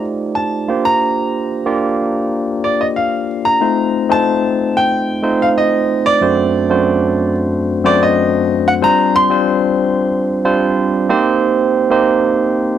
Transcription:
0.00 0.70 A3 medium
0.00 0.70 D#4 medium
0.00 0.68 F4 medium
0.00 0.69 G4 medium
0.00 0.69 C5 medium
0.00 0.70 D5 medium
0.35 0.86 A5 medium
0.68 1.46 A#3 medium
0.68 1.46 D4 medium
0.68 1.46 F4 medium
0.68 1.47 G4 medium
0.68 1.47 C5 medium
0.85 3.25 A#5 medium
1.66 2.50 A#3 medium
1.66 2.50 D4 medium
1.66 2.50 F4 medium
1.66 2.50 G4 medium
1.66 2.50 D5 medium
2.64 2.80 D5 medium
2.81 2.86 D#5 medium
2.96 3.46 F5 medium
3.45 4.12 A#5 medium
3.61 3.92 A3 medium
3.61 3.93 C4 medium
3.61 3.93 D#4 medium
3.61 3.93 F4 medium
3.61 3.93 C5 medium
4.09 4.83 A3 medium
4.09 4.83 C4 medium
4.09 4.83 D#4 medium
4.09 4.84 F4 medium
4.09 4.84 C5 medium
4.09 4.78 A5 loud
4.77 5.43 G5 medium
5.22 5.86 A3 medium
5.22 5.87 C4 medium
5.22 5.87 D#4 medium
5.22 5.87 F4 medium
5.22 5.87 C5 medium
5.42 5.47 F5 medium
5.58 6.07 D#5 medium
6.06 7.32 D5 medium
6.21 6.53 F#2 medium
6.21 6.53 A3 medium
6.21 6.53 C4 medium
6.21 6.53 D4 medium
6.21 6.53 F#4 medium
6.21 6.54 C5 medium
6.70 7.44 F#2 medium
6.70 7.44 A3 medium
6.70 7.44 C4 medium
6.70 7.44 D4 medium
6.70 7.44 F#4 medium
6.70 7.44 C5 medium
7.84 8.47 F#2 medium
7.84 8.47 A3 medium
7.84 8.47 C4 medium
7.84 8.48 D4 medium
7.84 8.48 F#4 medium
7.84 8.48 C5 medium
7.84 8.02 D5 medium
8.03 8.69 D#5 medium
8.68 8.73 F#5 medium
8.82 9.13 G3 medium
8.82 9.13 C4 medium
8.82 9.13 D4 medium
8.82 9.14 F4 medium
8.82 9.14 C5 medium
8.82 9.16 A#5 loud
9.16 12.78 C6 loud
9.30 10.04 G3 medium
9.30 10.04 C4 medium
9.30 10.04 D4 medium
9.30 10.04 F4 medium
9.30 10.05 C5 medium
10.44 11.08 G3 medium
10.44 11.08 C4 medium
10.44 11.08 D4 medium
10.44 11.08 F4 medium
10.44 11.08 C5 loud
11.09 11.75 A#3 medium
11.09 11.75 C4 medium
11.09 11.75 D#4 medium
11.09 11.75 G4 medium
11.09 11.75 C5 loud
11.90 12.65 A#3 medium
11.90 12.65 C4 medium
11.90 12.65 D#4 medium
11.90 12.65 G4 medium
11.90 12.65 C5 medium

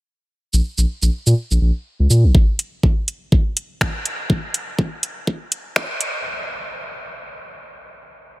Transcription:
0.53 0.61 A#1 medium
0.53 shaker soft
0.78 0.85 A#1 medium
0.78 shaker soft
1.02 1.10 A#1 medium
1.02 shaker soft
1.26 1.34 A#2 loud
1.26 shaker soft
1.51 1.58 A#1 medium
1.51 shaker soft
1.61 1.71 A#1 medium
2.00 2.07 C#2 medium
2.10 2.25 A#2 medium
2.10 shaker soft
2.24 2.31 A#1 medium
2.35 kick loud
2.59 closed hi-hat medium
2.83 kick loud
3.08 closed hi-hat medium
3.32 kick loud
3.57 closed hi-hat medium
3.81 finger snap loud
3.81 kick loud
4.06 closed hi-hat medium
4.30 kick loud
4.54 closed hi-hat medium
4.79 kick loud
5.03 closed hi-hat medium
5.27 kick loud
5.52 closed hi-hat loud
5.76 finger snap loud
5.76 kick loud
6.01 closed hi-hat loud

